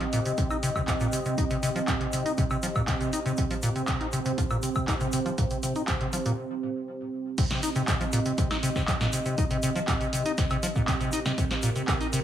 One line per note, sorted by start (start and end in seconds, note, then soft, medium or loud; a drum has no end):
0.00 0.05 F3 medium
0.00 7.34 C4 medium
0.00 7.34 G4 medium
0.00 3.37 D#5 medium
0.00 clap soft
0.00 closed hi-hat soft
0.13 0.20 A#2 loud
0.13 open hi-hat loud
0.13 shaker medium
0.26 0.33 C3 medium
0.26 closed hi-hat soft
0.26 shaker soft
0.38 0.48 C3 medium
0.38 kick loud
0.38 closed hi-hat medium
0.38 shaker soft
0.50 0.57 D#4 medium
0.50 high woodblock medium
0.50 shaker soft
0.63 0.70 C3 loud
0.63 open hi-hat loud
0.63 shaker medium
0.76 0.82 C3 loud
0.76 kick medium
0.76 high woodblock medium
0.76 shaker soft
0.88 0.92 F3 loud
0.88 kick loud
0.88 clap loud
0.88 closed hi-hat medium
0.88 shaker medium
1.00 1.07 A#2 loud
1.00 closed hi-hat soft
1.00 shaker soft
1.13 1.20 C3 medium
1.13 open hi-hat loud
1.13 shaker medium
1.25 1.36 C3 medium
1.25 closed hi-hat soft
1.25 shaker soft
1.38 1.45 D#4 medium
1.38 kick loud
1.38 closed hi-hat medium
1.38 shaker soft
1.50 1.57 C3 loud
1.50 closed hi-hat soft
1.50 shaker soft
1.63 1.70 C3 loud
1.63 open hi-hat loud
1.63 shaker medium
1.75 1.80 F3 loud
1.75 closed hi-hat soft
1.75 shaker soft
1.88 1.95 A#2 loud
1.88 kick loud
1.88 clap loud
1.88 closed hi-hat medium
1.88 shaker soft
2.00 2.07 C3 medium
2.00 clap soft
2.00 closed hi-hat soft
2.13 2.23 C3 medium
2.13 open hi-hat loud
2.13 shaker medium
2.26 2.32 D#4 medium
2.26 closed hi-hat soft
2.26 shaker soft
2.38 2.45 C3 loud
2.38 kick loud
2.38 closed hi-hat medium
2.38 shaker soft
2.50 2.57 C3 loud
2.50 high woodblock medium
2.50 shaker soft
2.63 2.67 F3 loud
2.63 open hi-hat loud
2.63 shaker medium
2.76 2.82 A#2 loud
2.76 kick medium
2.76 high woodblock medium
2.76 shaker soft
2.88 2.95 C3 medium
2.88 kick loud
2.88 clap loud
2.88 closed hi-hat medium
2.88 shaker medium
3.01 3.11 C3 medium
3.01 closed hi-hat soft
3.01 shaker soft
3.13 3.20 D#4 medium
3.13 open hi-hat loud
3.13 shaker medium
3.26 3.32 C3 loud
3.26 closed hi-hat soft
3.26 shaker soft
3.37 3.45 C3 loud
3.37 7.37 C5 medium
3.37 kick loud
3.37 closed hi-hat medium
3.37 shaker medium
3.51 3.55 F3 loud
3.51 closed hi-hat medium
3.51 shaker soft
3.62 3.70 A#2 loud
3.62 open hi-hat loud
3.62 shaker medium
3.76 3.82 C3 medium
3.76 closed hi-hat soft
3.76 shaker soft
3.87 3.98 C3 medium
3.87 kick loud
3.87 clap loud
3.87 closed hi-hat medium
3.87 shaker soft
4.00 4.07 D#4 medium
4.00 clap soft
4.00 closed hi-hat soft
4.12 4.20 C3 loud
4.12 open hi-hat loud
4.12 shaker medium
4.25 4.32 C3 loud
4.25 closed hi-hat medium
4.25 shaker soft
4.38 4.42 F3 loud
4.38 kick loud
4.38 closed hi-hat medium
4.38 shaker soft
4.50 4.57 A#2 loud
4.50 high woodblock medium
4.50 shaker soft
4.63 4.70 C3 medium
4.63 open hi-hat loud
4.63 shaker medium
4.75 4.86 C3 medium
4.75 kick medium
4.75 high woodblock medium
4.75 shaker soft
4.88 4.95 D#4 medium
4.88 kick loud
4.88 clap loud
4.88 closed hi-hat medium
4.88 shaker soft
5.01 5.07 C3 loud
5.01 closed hi-hat soft
5.01 shaker soft
5.12 5.20 C3 loud
5.12 open hi-hat loud
5.12 shaker medium
5.26 5.30 F3 loud
5.26 closed hi-hat soft
5.26 shaker soft
5.38 5.45 A#2 loud
5.38 kick loud
5.38 closed hi-hat medium
5.38 shaker soft
5.50 5.57 C3 medium
5.50 closed hi-hat medium
5.50 shaker soft
5.63 5.73 C3 medium
5.63 open hi-hat loud
5.63 shaker medium
5.75 5.82 D#4 medium
5.75 closed hi-hat soft
5.75 shaker soft
5.87 5.95 C3 loud
5.87 kick loud
5.87 clap loud
5.87 closed hi-hat medium
5.87 shaker soft
6.00 6.07 C3 loud
6.00 clap soft
6.00 closed hi-hat soft
6.13 6.17 F3 loud
6.13 open hi-hat loud
6.13 shaker medium
6.25 6.32 A#2 loud
6.25 closed hi-hat medium
6.25 shaker soft
7.38 7.45 C3 medium
7.38 12.24 C4 medium
7.38 12.24 G4 medium
7.38 11.36 D#5 medium
7.38 kick loud
7.38 closed hi-hat medium
7.38 crash loud
7.38 shaker soft
7.50 7.61 C3 medium
7.50 snare medium
7.50 closed hi-hat medium
7.50 shaker soft
7.63 7.70 D#4 medium
7.63 open hi-hat loud
7.63 shaker medium
7.76 7.82 C3 loud
7.76 closed hi-hat soft
7.76 shaker soft
7.88 7.95 C3 loud
7.88 kick loud
7.88 clap loud
7.88 closed hi-hat medium
7.88 shaker medium
8.01 8.05 F3 loud
8.01 closed hi-hat soft
8.01 shaker soft
8.12 8.20 A#2 loud
8.12 open hi-hat loud
8.12 shaker medium
8.25 8.32 C3 medium
8.25 closed hi-hat medium
8.25 shaker soft
8.38 8.48 C3 medium
8.38 kick loud
8.38 closed hi-hat medium
8.38 shaker medium
8.51 8.57 D#4 medium
8.51 snare medium
8.51 high woodblock medium
8.51 shaker soft
8.63 8.70 C3 loud
8.63 open hi-hat loud
8.63 shaker medium
8.76 8.82 C3 loud
8.76 kick medium
8.76 snare soft
8.76 shaker soft
8.88 8.92 F3 loud
8.88 kick loud
8.88 clap loud
8.88 closed hi-hat medium
8.88 shaker medium
9.01 9.07 A#2 loud
9.01 snare medium
9.01 closed hi-hat soft
9.01 shaker soft
9.13 9.20 C3 medium
9.13 open hi-hat loud
9.13 shaker loud
9.26 9.36 C3 medium
9.26 closed hi-hat soft
9.26 shaker soft
9.38 9.45 D#4 medium
9.38 kick loud
9.38 closed hi-hat medium
9.38 shaker medium
9.50 9.57 C3 loud
9.50 closed hi-hat medium
9.50 shaker soft
9.63 9.70 C3 loud
9.63 open hi-hat loud
9.63 shaker loud
9.76 9.80 F3 loud
9.76 closed hi-hat soft
9.76 shaker soft
9.87 9.95 A#2 loud
9.87 kick loud
9.87 clap loud
9.87 closed hi-hat medium
9.87 shaker soft
10.01 10.07 C3 medium
10.01 closed hi-hat soft
10.01 shaker soft
10.13 10.23 C3 medium
10.13 open hi-hat loud
10.13 shaker medium
10.25 10.32 D#4 medium
10.25 closed hi-hat medium
10.25 shaker soft
10.38 10.45 C3 loud
10.38 kick loud
10.38 snare medium
10.38 closed hi-hat medium
10.38 shaker medium
10.50 10.57 C3 loud
10.50 closed hi-hat soft
10.50 high woodblock medium
10.50 shaker soft
10.63 10.67 F3 loud
10.63 open hi-hat loud
10.63 shaker loud
10.75 10.82 A#2 loud
10.75 kick medium
10.75 shaker soft
10.88 10.95 C3 medium
10.88 kick loud
10.88 clap loud
10.88 closed hi-hat medium
10.88 shaker medium
11.00 11.11 C3 medium
11.00 closed hi-hat soft
11.00 shaker soft
11.12 11.20 D#4 medium
11.12 open hi-hat loud
11.12 shaker loud
11.26 11.32 C3 loud
11.26 snare medium
11.26 closed hi-hat soft
11.26 shaker soft
11.38 11.45 C3 loud
11.38 12.24 A#4 medium
11.38 kick loud
11.38 closed hi-hat medium
11.38 shaker medium
11.51 11.55 F3 loud
11.51 snare medium
11.51 closed hi-hat soft
11.51 shaker soft
11.62 11.70 A#2 loud
11.62 open hi-hat loud
11.62 shaker medium
11.76 11.82 C3 medium
11.76 closed hi-hat soft
11.76 shaker soft
11.88 11.98 C3 medium
11.88 kick loud
11.88 clap loud
11.88 closed hi-hat medium
11.88 shaker medium
12.01 12.07 D#4 medium
12.01 closed hi-hat soft
12.01 shaker soft
12.13 12.20 C3 loud
12.13 open hi-hat loud
12.13 shaker loud